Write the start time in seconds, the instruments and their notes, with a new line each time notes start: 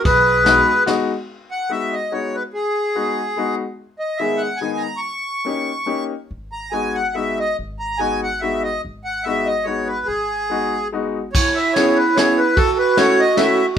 0.04 upright bass B1, clarinet G#4, accordion B4, kick, ride
0.44 upright piano G#3 B3 D#4 F#4, snare, ride
0.86 upright piano G#3 B3 D#4 F#4, snare, ride
1.51 accordion F#5
1.69 upright piano G#3 B3 D#4 F#4, accordion E5
1.93 accordion D#5
2.12 upright piano G#3 B3 D#4 F#4, accordion C#5
2.34 accordion B4
2.54 accordion G#4
2.95 upright piano G#3 B3 D#4 F#4
3.37 upright piano G#3 B3 D#4 F#4
3.99 accordion D#5
4.17 upright piano D#3 G#3 B3 D#4, accordion E5
4.22 upright piano G#4
4.37 accordion F#5
4.56 accordion G#5
4.61 upright piano D#3 G#3 B3 D#4 G#4
4.77 accordion A#5
4.97 accordion C#6
5.45 upright piano A#3 C#4 D#4 G4
5.86 upright piano A#3 C#4 D#4 G4
6.31 upright bass G#1
6.52 accordion A#5
6.71 upright piano G#3 B3 D#4 F#4, accordion G#5
6.95 accordion F#5
7.15 upright piano G#3 B3 D#4 F#4, accordion E5
7.39 accordion D#5
7.59 upright bass G#1
7.79 accordion A#5
7.98 upright piano G#3 B3 D#4 F#4, accordion G#5
8.23 accordion F#5
8.40 upright piano G#3 B3 D#4 F#4, accordion E5
8.63 accordion D#5
8.85 upright bass G#1
9.05 accordion F#5
9.24 upright piano G#3 B3 D#4 F#4, accordion E5
9.46 accordion D#5
9.63 upright piano G#3 B3 D#4, accordion C#5
9.68 upright piano F#4
9.87 accordion B4
10.06 upright bass G#1, accordion G#4
10.49 upright piano G#3 B3 D#4 F#4
10.92 upright piano G#3 B3 D#4 F#4
11.33 clarinet E4, accordion C#5, kick, crash
11.55 accordion E5, ride
11.73 upright piano B3 C#4 E4, accordion C#5, snare, ride
11.78 upright piano G#4
11.97 accordion B4
12.16 upright piano B3 C#4 E4 G#4, accordion C#5, snare, ride
12.38 accordion B4
12.56 clarinet F#4, accordion A4, kick, ride
12.78 accordion B4
12.97 upright piano A3 C#4 E4 F#4, accordion C#5, snare, ride
13.20 accordion D#5
13.37 upright piano A3 C#4 E4 F#4, accordion E5, snare, ride